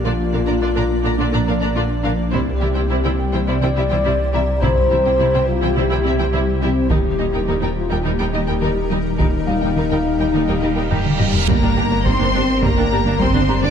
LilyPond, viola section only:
\new Staff \with { instrumentName = "Viola section" } { \time 4/4 \key g \minor \tempo 4 = 105 <d d'>16 r16 <d d'>16 <d d'>16 <d d'>16 <d d'>16 r16 <d d'>16 <d d'>16 <d d'>16 <d d'>16 <d d'>16 <d d'>16 r16 <d d'>16 r16 | <g e'>16 r16 <g e'>16 <g e'>16 <g e'>16 <g e'>16 r16 <g e'>16 <g e'>16 <g e'>16 <g e'>16 <g e'>16 <g e'>16 r16 <g e'>16 r16 | <g e'>16 r16 <g e'>16 <g e'>16 <g e'>16 <g e'>16 r16 <g e'>16 <g e'>16 <g e'>16 <g e'>16 <g e'>16 <g e'>16 r16 <g e'>16 r16 | <g ees'>16 r16 <g ees'>16 <g ees'>16 <g ees'>16 <g ees'>16 r16 <g ees'>16 <g ees'>16 <g ees'>16 <g ees'>16 <g ees'>16 <g ees'>16 r16 <g ees'>16 r16 |
<g ees'>16 r16 <g ees'>16 <g ees'>16 <g ees'>16 <g ees'>16 r16 <g ees'>16 <g ees'>16 <g ees'>16 <g ees'>16 <g ees'>16 <g ees'>16 r16 <g ees'>16 r16 | <g bes>16 <bes d'>16 <d' g'>16 <bes d'>16 <g bes>16 <bes d'>16 <d' g'>16 r16 <g bes>16 <bes d'>16 <d' g'>16 <bes d'>16 <g bes>16 <bes d'>16 <d' g'>16 <bes d'>16 | }